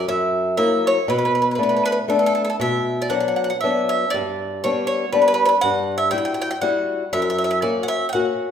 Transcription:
0.08 nylon-string guitar F#2, mandolin E5
0.57 nylon-string guitar F#3 A#3 E4, mandolin E5
0.87 mandolin C#5
1.08 nylon-string guitar B2, mandolin B4
1.18 mandolin B4
1.25 mandolin B4
1.35 mandolin B4
1.42 mandolin B4
1.51 mandolin B4
1.55 nylon-string guitar A3 D4, mandolin B4
1.59 nylon-string guitar B3, mandolin B4
1.69 mandolin B4
1.77 mandolin B4
1.85 mandolin B4
1.92 mandolin B4
2.08 nylon-string guitar A3 B3 D4, mandolin A4
2.19 mandolin A4
2.26 mandolin A4
2.35 mandolin A4
2.45 mandolin A4
2.50 mandolin A4
2.60 nylon-string guitar B2, mandolin E5
3.02 mandolin D5
3.10 nylon-string guitar F#3 B3 D4, mandolin F#5
3.20 mandolin F#5
3.28 mandolin F#5
3.36 mandolin F#5
3.44 mandolin F#5
3.50 mandolin F#5
3.61 nylon-string guitar F#3 B3 D4, mandolin E5
3.89 mandolin E5
4.10 nylon-string guitar G2, mandolin D5
4.64 nylon-string guitar G3 B3 D4, mandolin C#5
4.87 mandolin C#5
5.13 nylon-string guitar G3 B3 D4, mandolin B4
5.22 mandolin B4
5.28 mandolin B4
5.34 mandolin B4
5.45 mandolin B4
5.61 nylon-string guitar G2, mandolin F#5
5.98 mandolin E5
6.11 nylon-string guitar G3 E4 F#4, mandolin G5
6.18 mandolin G5
6.25 mandolin G5
6.34 mandolin G5
6.42 mandolin G5
6.51 mandolin G5
6.62 nylon-string guitar G3 E4 F#4, mandolin F#5
7.13 nylon-string guitar F#2, mandolin E5
7.22 mandolin E5
7.30 mandolin E5
7.38 mandolin E5
7.44 mandolin E5
7.51 mandolin E5
7.62 nylon-string guitar A#3 C#4 F#4, mandolin D5
7.83 mandolin F#5
7.88 mandolin E5
8.09 mandolin F#5 G5
8.14 nylon-string guitar A#3 C#4 F#4

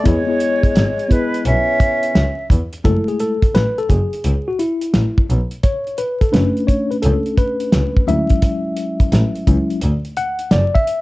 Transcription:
0.04 double bass E2, tenor saxophone G#3, tine electric piano B3 E4 G#4 C#5, flute C#5, kick, closed hi-hat
0.27 tine electric piano B3 E4 G#4 C#5
0.40 closed hi-hat
0.63 kick, closed hi-hat
0.76 double bass G#1, snare, closed hi-hat
0.99 closed hi-hat
1.08 tenor saxophone G#3, tine electric piano B3 E4 G#4 B4, flute B4, kick, closed hi-hat
1.34 closed hi-hat
1.45 double bass B1, tenor saxophone C#4, flute E5, closed hi-hat
1.80 kick, closed hi-hat
2.03 closed hi-hat
2.15 double bass C#2, snare, closed hi-hat
2.50 double bass E2, kick, closed hi-hat
2.73 closed hi-hat
2.84 double bass F#1, tine electric piano G#3 A3 E4 A4, kick, closed hi-hat
3.08 tine electric piano G#4, closed hi-hat
3.20 tine electric piano A4, closed hi-hat
3.42 kick, closed hi-hat
3.55 double bass A1, tine electric piano B4, snare, closed hi-hat
3.78 tine electric piano A4, closed hi-hat
3.90 double bass F#1, tine electric piano G#4, kick, closed hi-hat
4.13 closed hi-hat
4.24 double bass C#2, closed hi-hat
4.48 tine electric piano F#4
4.59 tine electric piano E4, closed hi-hat
4.81 closed hi-hat
4.94 double bass A1, snare, closed hi-hat
5.18 kick
5.30 double bass B1, closed hi-hat
5.51 closed hi-hat
5.63 tine electric piano C#5, kick, closed hi-hat
5.87 closed hi-hat
5.98 tine electric piano B4, closed hi-hat
6.21 tine electric piano A4, kick, closed hi-hat
6.32 double bass F#1, tine electric piano A3 C#4 D4 B4, snare, closed hi-hat
6.57 closed hi-hat
6.67 tine electric piano C#5, kick, closed hi-hat
6.91 tine electric piano B4, closed hi-hat
7.02 double bass C#2, tine electric piano A4, closed hi-hat
7.26 closed hi-hat
7.38 tine electric piano B4, kick, closed hi-hat
7.60 closed hi-hat
7.72 double bass C#2, snare, closed hi-hat
7.97 kick
8.07 double bass D2, tine electric piano F#3 G#3 C#4 E4 E5, closed hi-hat
8.29 kick, closed hi-hat
8.42 kick, closed hi-hat
8.77 closed hi-hat
9.00 kick, closed hi-hat
9.12 double bass A1, snare, closed hi-hat
9.35 closed hi-hat
9.47 double bass C#2, tine electric piano F#3 G#3 C#4 E4, kick, closed hi-hat
9.70 closed hi-hat
9.81 double bass D2, closed hi-hat
10.05 closed hi-hat
10.17 tine electric piano F#5, closed hi-hat
10.39 closed hi-hat
10.51 double bass F#1, tine electric piano D5, snare, closed hi-hat
10.75 tine electric piano E5, kick, closed hi-hat
10.87 closed hi-hat

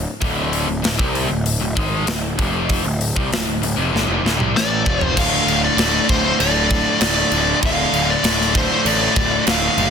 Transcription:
0.21 picked electric bass D1, distorted electric guitar D2 A2 D3, kick, open hi-hat
0.53 open hi-hat
0.67 picked electric bass D1, distorted electric guitar D2 A2
0.82 picked electric bass D1, distorted electric guitar D2 A2, snare, open hi-hat
0.97 picked electric bass C2, distorted electric guitar C3 G3 C4, kick
1.15 open hi-hat
1.29 picked electric bass D1, distorted electric guitar D2 A2
1.46 open hi-hat
1.60 picked electric bass D1, distorted electric guitar D2 A2
1.75 picked electric bass G#1, distorted electric guitar G#2 D#3 G#3, kick, open hi-hat
2.07 picked electric bass D1, distorted electric guitar D2 A2, snare, open hi-hat
2.38 picked electric bass F1, distorted electric guitar F2 C3 F3, kick, open hi-hat
2.69 kick, open hi-hat
2.84 picked electric bass D1, distorted electric guitar D2 A2
3.01 open hi-hat
3.16 picked electric bass C2, distorted electric guitar C3 G3, kick
3.31 picked electric bass D1, distorted electric guitar D2 A2, snare, open hi-hat
3.46 picked electric bass D1, distorted electric guitar D2 A2
3.62 picked electric bass D1, distorted electric guitar D2 A2, open hi-hat
3.76 picked electric bass F1, distorted electric guitar F2 C3
3.92 picked electric bass G1, distorted electric guitar G2 D3, snare
4.07 picked electric bass F1, distorted electric guitar F2 C3
4.23 picked electric bass D1, distorted electric guitar D2 A2, snare
4.38 picked electric bass C2, distorted electric guitar C3 G3, mid tom
4.54 picked electric bass A1, distorted electric guitar A2 E3 A3, lead electric guitar D5, snare
4.85 picked electric bass F1, distorted electric guitar F2 C3 F3, kick
5.01 lead electric guitar C5, floor tom
5.14 picked electric bass D1, distorted electric guitar D2 A2 D3, kick, crash
5.19 distorted electric guitar A3 F4, lead electric guitar F5
5.47 picked electric bass D1, crash
5.64 lead electric guitar D5
5.77 picked electric bass D1, distorted electric guitar D2 A2 D3, snare, crash
6.08 picked electric bass D1, distorted electric guitar D2 A2 D3, lead electric guitar C5, kick, crash
6.39 picked electric bass D1, distorted electric guitar D2 A2 D3 A3 F4, lead electric guitar D5, crash
6.70 kick, crash
7.01 picked electric bass D1, distorted electric guitar D2 A2 D3, lead electric guitar D5, snare, crash
7.32 picked electric bass D1, distorted electric guitar D2 A2 D3, crash
7.61 picked electric bass D1, distorted electric guitar D2 A2 D3 A3 F4, kick, crash
7.66 lead electric guitar F5
7.93 picked electric bass D1, crash
8.10 lead electric guitar D5
8.23 picked electric bass D1, distorted electric guitar D2 A2 D3, snare, crash
8.41 snare
8.54 distorted electric guitar D2 A2 D3, lead electric guitar C5, kick, crash
8.85 picked electric bass A1, distorted electric guitar D2 A2 D3 A3 F4, lead electric guitar D5, crash
9.16 picked electric bass D1, kick, crash
9.46 picked electric bass D1, distorted electric guitar D2 A2 D3, snare, crash
9.50 lead electric guitar F5
9.76 picked electric bass F#1, distorted electric guitar D2 A2 D3, crash

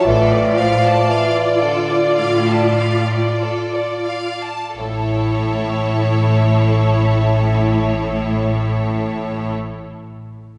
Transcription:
0.07 double bass section A1, cello section A2, bassoon E3, viola section F4, violin section A4 D5
0.33 violin section D5
0.56 bassoon F3, violin section F5
0.85 violin section A5
1.08 bassoon E3, violin section F5
1.36 violin section D5
1.62 bassoon D3, violin section A4
1.90 violin section D5
2.18 cello section A2, violin section F5
2.47 violin section A5
2.76 violin section F5
3.07 violin section D5
3.39 violin section A4
3.73 violin section D5
4.09 violin section F5
4.44 violin section A5
4.77 double bass section A1, bassoon A2, cello section A2, viola section E4, violin section A4 C#5

